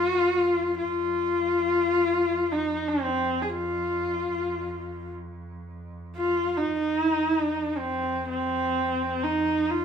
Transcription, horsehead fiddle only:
0.00 0.78 F4 medium
0.78 2.54 F4 medium
2.52 2.90 D#4 medium
2.88 3.43 C4 medium
3.42 3.51 G#4 soft
3.50 5.13 F4 medium
6.17 6.59 F4 medium
6.57 6.99 D#4 medium
6.99 7.11 E4 medium
7.11 7.23 D#4 medium
7.23 7.35 E4 medium
7.35 7.79 D#4 medium
7.78 8.29 C4 medium
8.30 9.25 C4 medium
9.24 9.72 D#4 medium
9.71 9.85 F4 medium

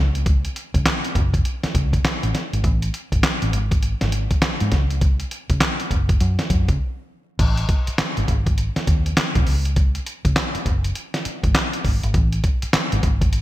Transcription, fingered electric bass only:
0.00 0.46 C#2 medium
0.75 0.84 C#2 medium
1.15 1.40 F#1 loud
1.64 muted fingered electric bass stroke soft
1.75 2.00 C#2 medium
2.05 muted fingered electric bass stroke soft
2.23 2.32 A1 medium
2.53 2.62 G#1 medium
2.64 2.89 A1 loud
3.12 3.21 G#1 medium
3.24 muted fingered electric bass stroke soft
3.42 3.51 A1 medium
3.53 3.94 G#1 loud
4.02 4.26 G#1 medium
4.61 4.70 G#2 medium
4.72 5.22 C#2 loud
5.50 5.59 C#2 medium
5.91 6.16 F#1 medium
6.21 6.36 F#2 loud
6.50 6.66 F#2 loud
6.69 6.78 C#2 medium
7.39 7.64 A1 loud
7.88 muted fingered electric bass stroke soft
7.99 muted fingered electric bass stroke soft
8.18 8.27 G#1 loud
8.28 8.69 G#1 loud
8.77 muted fingered electric bass stroke soft
8.88 9.12 D#2 medium
9.18 muted fingered electric bass stroke soft
9.36 9.45 B1 medium
9.47 9.97 C#2 medium
10.25 10.34 C#2 medium
10.55 muted fingered electric bass stroke medium
10.66 10.91 F#1 medium
11.26 muted fingered electric bass stroke soft
11.44 11.53 G#1 medium
11.85 12.00 G#1 medium
12.03 12.13 G#1 medium
12.14 12.39 A1 loud
12.63 muted fingered electric bass stroke soft
12.74 muted fingered electric bass stroke soft
12.93 13.02 G#1 loud
13.03 13.42 G#1 loud

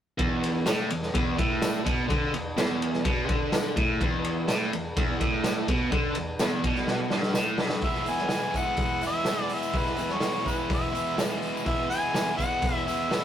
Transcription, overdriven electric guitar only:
0.18 0.66 E2 loud
0.66 0.90 A2 loud
0.90 1.10 E2 medium
1.14 1.38 E2 loud
1.38 1.84 A2 loud
1.85 2.08 B2 loud
2.08 2.32 D3 loud
2.32 2.52 E2 medium
2.57 3.04 E2 loud
3.05 3.28 B2 loud
3.28 3.76 D3 loud
3.76 4.00 A2 loud
4.00 4.48 E2 loud
4.49 4.72 A2 loud
4.73 4.92 E2 medium
4.98 5.21 E2 loud
5.20 5.68 A2 loud
5.69 5.91 B2 loud
5.92 6.15 D3 loud
6.16 6.35 E2 medium
6.40 6.63 E2 loud
6.64 7.11 B2 loud
7.13 7.36 G2 loud
7.36 7.59 A2 loud
7.60 7.83 G2 loud
7.84 8.30 E3 medium
7.84 8.09 G#3 loud
7.84 8.07 B3 medium
7.84 8.06 E4 loud
8.06 8.31 G#3 medium
8.06 8.32 B3 medium
8.06 8.33 E4 medium
8.30 9.27 E3 medium
8.30 8.57 G#3 medium
8.30 8.56 B3 medium
8.30 8.55 E4 medium
8.55 9.05 G#3 medium
8.55 9.04 B3 medium
8.55 9.02 E4 medium
9.03 9.28 G#3 medium
9.03 9.29 B3 medium
9.03 9.30 E4 medium
9.27 9.74 E3 medium
9.27 9.75 G#3 medium
9.27 9.76 B3 medium
9.27 9.77 E4 loud
9.75 10.21 E3 medium
9.75 10.00 G#3 medium
9.75 9.98 B3 loud
9.75 9.97 E4 medium
9.98 10.21 G#3 medium
9.98 10.22 B3 medium
9.98 10.23 E4 medium
10.21 11.16 E3 medium
10.21 10.47 G#3 medium
10.21 10.46 B3 medium
10.21 10.44 E4 loud
10.44 10.94 G#3 medium
10.44 10.93 B3 medium
10.44 10.92 E4 medium
10.92 11.17 G#3 medium
10.92 11.17 B3 medium
10.92 11.18 E4 medium
11.16 11.65 E3 medium
11.16 11.65 G#3 medium
11.16 11.66 B3 loud
11.16 11.67 E4 medium
11.65 12.13 E3 medium
11.65 11.92 G#3 medium
11.65 11.91 B3 medium
11.65 11.89 E4 medium
11.90 12.14 G#3 medium
11.90 12.15 B3 medium
11.90 12.16 E4 medium
12.13 13.10 E3 medium
12.13 12.40 G#3 medium
12.13 12.39 B3 medium
12.13 12.36 E4 loud
12.37 12.89 G#3 medium
12.37 12.88 B3 medium
12.37 12.87 E4 medium
12.87 13.11 G#3 medium
12.87 13.12 B3 medium
12.87 13.13 E4 medium
13.10 13.24 E3 medium
13.10 13.24 G#3 medium
13.10 13.24 B3 medium
13.10 13.24 E4 loud

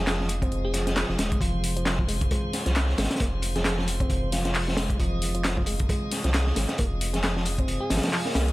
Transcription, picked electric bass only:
0.07 0.19 F3 medium
0.20 0.29 F3 medium
0.42 0.73 C4 medium
0.74 1.08 F3 medium
1.09 1.18 F3 medium
1.19 1.40 G#3 loud
1.41 1.75 F3 medium
1.77 1.85 F3 medium
1.86 1.94 F3 medium
1.99 2.02 F3 loud
2.08 2.16 G#3 medium
2.31 2.65 G#3 medium
2.66 2.70 F3 medium
2.98 3.06 G#3 medium
3.20 3.25 A#3 medium
3.56 3.59 F3 medium
3.65 3.77 F3 medium
3.78 3.87 F3 medium
4.00 4.31 C4 medium
4.32 4.66 F3 medium
4.67 4.76 F3 medium
4.77 4.98 G#3 loud
4.99 5.33 F3 medium
5.35 5.43 F3 medium
5.44 5.52 F3 medium
5.57 5.61 F3 loud
5.67 5.75 G#3 medium
5.89 6.23 G#3 medium
6.24 6.28 F3 medium
6.56 6.64 G#3 medium
6.79 6.83 A#3 medium
7.14 7.17 F3 medium
7.24 7.35 F3 medium
7.36 7.45 F3 medium
7.59 7.90 C4 medium
7.90 8.02 F3 medium
8.03 8.12 F3 medium
8.13 8.21 F3 loud
8.26 8.34 A#3 medium
8.35 8.47 A#3 medium

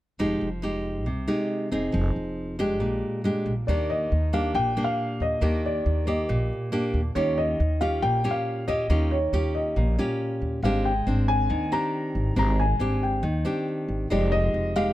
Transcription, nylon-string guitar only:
0.19 1.04 F3 soft
0.19 0.47 G#3 soft
0.19 0.48 D#4 soft
0.19 0.48 G4 medium
0.62 1.06 G#3 soft
0.62 1.06 D#4 soft
0.62 1.06 G4 soft
1.06 1.91 C3 soft
1.28 1.68 G#3 soft
1.28 1.68 D#4 soft
1.28 1.68 G4 medium
1.71 2.55 C4 soft
1.71 2.55 D#4 soft
1.71 2.56 G#4 medium
1.92 2.78 F3 soft
2.59 3.21 G#3 medium
2.59 3.21 D4 medium
2.59 3.21 G4 medium
2.80 3.65 A#2 medium
3.24 3.52 G#3 medium
3.24 3.53 D4 soft
3.24 3.53 G4 medium
3.69 4.53 D#3 soft
3.69 4.11 A#3 soft
3.69 4.11 D4 soft
3.69 4.12 G4 soft
4.33 4.73 A#3 medium
4.33 4.73 D4 medium
4.33 4.73 G4 medium
4.55 5.40 A#2 soft
4.77 5.38 A#3 medium
4.77 5.38 D4 soft
4.77 5.38 G4 medium
5.41 6.26 D#3 soft
5.41 6.03 A#3 medium
5.41 6.03 D4 soft
5.41 6.04 G4 medium
6.07 6.68 A#3 medium
6.07 6.69 G4 medium
6.29 7.13 A#2 soft
6.72 7.00 A#3 medium
6.72 7.00 D4 medium
6.72 7.00 G4 medium
7.15 8.00 D#3 soft
7.15 7.59 C#4 medium
7.15 7.59 F4 soft
7.15 7.59 G4 medium
7.81 8.21 C#4 medium
7.81 8.21 F4 medium
7.81 8.21 G4 medium
8.03 8.87 A#2 medium
8.24 8.64 C#4 soft
8.24 8.64 F4 soft
8.24 8.64 G4 medium
8.68 8.86 C#4 soft
8.68 8.86 F4 medium
8.68 8.86 G4 medium
8.90 9.74 D#3 soft
8.90 9.17 C#4 medium
8.90 9.17 F4 soft
8.90 9.18 G4 soft
9.33 9.94 C#4 soft
9.33 9.95 F4 medium
9.33 9.95 G4 medium
9.77 10.61 A#2 soft
9.99 10.60 C#4 soft
9.99 10.60 F4 medium
9.99 10.60 G4 medium
10.64 11.48 G#3 medium
10.64 10.91 C4 soft
10.64 10.91 D4 soft
10.64 10.92 G4 medium
11.07 11.68 C4 soft
11.07 11.69 D4 soft
11.50 12.34 D#3 medium
11.72 12.33 C4 medium
11.72 12.33 D4 medium
11.72 12.34 G4 medium
12.36 13.21 G#3 soft
12.36 12.64 C4 soft
12.36 12.64 D4 soft
12.36 12.65 G4 medium
12.80 13.23 C4 soft
12.80 13.23 D4 medium
12.80 13.23 G4 medium
13.23 14.08 D#3 medium
13.45 14.06 C4 medium
13.45 14.07 D4 soft
13.45 14.07 G4 medium
14.10 14.93 F3 soft
14.10 14.72 G#3 medium
14.10 14.72 D#4 soft
14.10 14.73 G4 medium
14.76 14.93 G#3 medium
14.76 14.93 D#4 medium
14.76 14.93 G4 medium

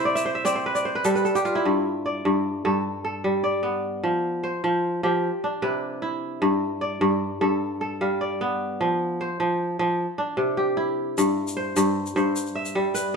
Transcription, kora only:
0.00 1.60 C3 medium
0.00 1.42 E4 medium
0.00 0.25 C5 medium
0.00 0.15 E5 medium
0.05 0.45 D5 medium
0.15 0.35 E5 medium
0.25 0.55 C5 medium
0.35 1.38 E5 medium
0.45 1.01 C4 medium
0.45 0.75 D5 medium
0.56 0.85 C5 medium
0.66 0.91 B4 medium
0.75 1.86 D5 medium
0.85 1.21 C5 medium
0.95 1.15 B4 medium
1.05 1.70 G3 medium
1.05 1.24 A4 medium
1.15 2.38 B4 medium
1.25 2.57 A4 medium
1.35 2.76 G4 medium
1.45 2.96 F4 medium
1.55 3.12 E4 medium
1.65 2.24 G2 medium
2.06 3.16 D5 medium
2.25 2.64 G2 medium
2.65 4.09 G2 medium
2.65 3.04 A4 medium
3.04 4.36 A4 medium
3.24 4.09 G3 medium
3.44 4.54 D5 medium
3.63 4.49 B3 medium
4.03 4.63 F3 medium
4.43 5.62 C5 medium
4.64 5.02 F3 medium
5.03 5.28 F3 medium
5.03 6.45 G4 medium
5.44 7.12 D4 soft
5.62 6.47 C3 medium
5.62 6.85 B4 medium
6.02 7.59 E4 medium
6.42 7.00 G2 medium
6.81 7.92 D5 medium
7.01 7.40 G2 medium
7.41 8.85 G2 medium
7.41 7.81 A4 medium
7.81 9.13 A4 medium
8.01 8.85 G3 medium
8.01 9.01 F5 soft
8.21 9.32 D5 medium
8.41 9.27 B3 medium
8.81 9.39 F3 medium
9.21 10.39 C5 medium
9.40 9.78 F3 medium
9.79 10.04 F3 medium
10.18 11.86 D4 medium
10.37 11.23 C3 medium
10.57 11.98 G4 medium
10.77 12.34 E4 medium
11.18 11.75 G2 medium
11.57 12.16 C5 medium
11.76 12.15 G2 medium
12.16 13.16 G2 medium
12.16 13.00 C5 medium
12.55 13.16 E5 medium
12.75 13.16 G3 medium
12.94 13.16 B4 medium

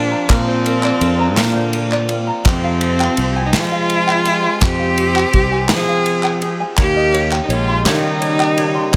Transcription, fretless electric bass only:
0.00 0.13 A#2 loud
0.29 0.91 A#2 loud
1.01 1.37 F2 loud
1.37 2.29 A#2 loud
2.45 3.07 F2 loud
3.18 3.55 C2 loud
3.54 4.46 F3 loud
4.62 5.23 F2 loud
5.33 5.71 C2 medium
5.69 6.62 F3 loud
6.78 7.39 D#2 loud
7.48 7.87 A#1 medium
7.85 8.78 D#3 loud

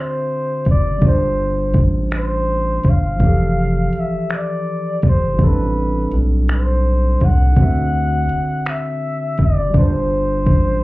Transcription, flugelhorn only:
0.00 0.68 C5 medium
0.70 1.08 D5 medium
1.06 1.86 C5 medium
2.17 2.91 C5 medium
2.90 4.01 F5 medium
4.00 4.37 E5 medium
4.35 5.05 D5 medium
5.08 5.46 C5 medium
5.44 6.23 B4 medium
6.54 7.26 C5 medium
7.25 8.71 F#5 loud
8.70 9.44 E5 medium
9.43 9.77 D5 medium
9.78 10.84 C5 medium

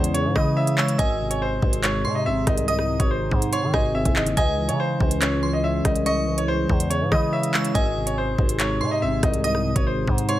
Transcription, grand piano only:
0.00 0.12 C5 medium
0.14 0.32 C#5 medium
0.35 0.53 D#5 medium
0.57 0.74 E5 medium
0.78 0.96 C#5 medium
0.98 1.29 D#5 loud
1.30 1.39 C#5 medium
1.42 1.81 C5 medium
1.83 2.13 C#5 loud
2.15 2.24 D#5 medium
2.26 2.44 E5 medium
2.47 2.65 D#5 medium
2.68 2.98 D#5 loud
2.99 3.08 C#5 medium
3.11 3.50 C5 medium
3.53 3.70 C#5 medium
3.74 3.91 D#5 medium
3.95 4.13 E5 medium
4.16 4.34 D#5 medium
4.37 4.67 D#5 loud
4.69 4.78 C#5 medium
4.80 5.19 C5 medium
5.22 5.52 C#5 medium
5.53 5.62 D#5 medium
5.64 5.82 E5 medium
5.85 6.03 D#5 medium
6.06 6.36 D#5 loud
6.38 6.47 C#5 medium
6.48 6.88 C5 medium
6.90 7.08 C#5 medium
7.12 7.29 D#5 medium
7.33 7.51 E5 medium
7.54 7.72 C#5 medium
7.74 8.05 D#5 loud
8.07 8.16 C#5 medium
8.18 8.57 C5 medium
8.59 8.89 C#5 medium
8.91 9.00 D#5 medium
9.02 9.20 E5 medium
9.23 9.41 D#5 medium
9.44 9.74 D#5 loud
9.76 9.85 C#5 medium
9.87 10.26 C5 medium
10.29 10.39 C#5 medium

